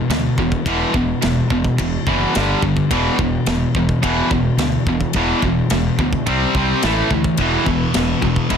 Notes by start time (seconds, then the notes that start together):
0.10 D2 E2 B2, snare, ride bell
0.38 E1 E2 B2, kick
0.52 kick
0.65 E1 E2 B2 E3, kick, ride bell
0.94 E1 E2 B2, kick
1.22 E1 E2 B2, snare, ride bell
1.50 E1 E2 B2, kick
1.64 kick
1.78 E1 E2 B2, kick, ride bell
2.07 F#1 E2 B2 E3, kick
2.35 G1 G2 D3 G3, snare, ride bell
2.62 G1 G2 D3, kick
2.77 kick
2.91 E1 E2 B2 E3, kick, ride bell
3.18 E1 E2 B2, kick
3.46 E1 E2 B2, snare, ride bell
3.75 E1 E2 B2, kick
3.89 kick
4.03 E1 E2 B2 E3, kick, ride bell
4.31 E1 E2 B2, kick
4.57 D2 E2 B2, snare, ride bell
4.86 E1 E2 B2, kick
5.01 kick
5.13 E1 E2 B2 E3, kick, ride bell
5.42 E1 E2 B2, kick
5.70 E1 E2 B2, snare, ride bell
5.98 D2 E2 B2, kick
6.13 kick
6.27 C2 C3 G3 C4, kick, ride bell
6.54 C2 C3 G3 C4, kick
6.83 A1 A2 E3 A3, snare, ride bell
7.10 D2 A2 E3, kick
7.24 kick
7.37 E1 E2 B2 E3, kick, ride bell
7.66 E1 E2 B2, kick
7.94 E1 E2 B2, snare, ride bell
8.22 E1 E2 B2, kick
8.36 kick
8.50 E1 E2 B2 E3, kick, ride bell